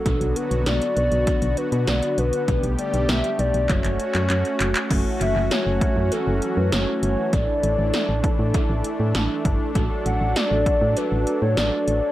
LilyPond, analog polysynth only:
\new Staff \with { instrumentName = "Analog polysynth" } { \time 4/4 \key fis \phrygian \tempo 4 = 99 <b d' fis'>1 | <b d' g'>2 <a fis'>2 | <a cis' fis'>1 | <d' a'>1 |
<d' fis' a'>1 | }